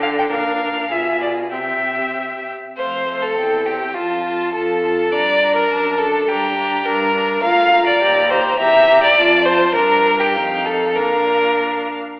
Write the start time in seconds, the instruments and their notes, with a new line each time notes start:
Already playing: cello D3, viola D4, violin A4
0.02 violin F5
0.18 violin G5
0.31 cello A#2, violin A#4 F5
0.90 cello B2, viola F4, violin G#4 E5
1.22 violin D5
1.52 cello C3, viola C4, violin G4 E5
2.77 cello F2, viola A3, violin C5 F5
3.07 viola A3, violin F5
3.22 violin A4
3.37 cello E2, viola C4, violin G5
3.66 viola C4, violin G4 G5
3.94 cello F2, violin F4 A5, viola F4
4.26 viola F4, violin A5
4.53 cello F2, viola F4, violin A4 A5
4.83 viola F4, violin A5
5.12 cello G2, viola D4, violin D5 A#5
5.41 viola D4, violin A#5
5.55 violin A#4
5.70 cello F#2, viola D4, violin A5
5.98 viola D4, violin A4 A5
6.28 cello G2, viola D4, violin G4 A#5
6.57 viola D4, violin A#5
6.85 cello G2, viola D4, violin A#4 A#5
7.14 viola D4, violin A#5
7.43 cello D2, viola F4, violin F5 A#5
7.72 viola F4, violin A#5
7.86 violin D5
8.01 cello D#2, viola G4, violin A#5
8.30 viola G4, violin C5 A#5
8.58 cello E2, viola G4, violin E5 A#5
8.89 viola G4, violin A#5
9.03 violin D5
9.17 cello F2, viola F4, violin A5
9.45 viola F4, violin C5 A5
9.74 cello G2, viola D4, violin A#4 A#5
10.20 violin G4
10.36 cello F2, viola D#4, violin F5
10.65 violin A4
10.96 cello A#2, viola D4, violin A#4 F5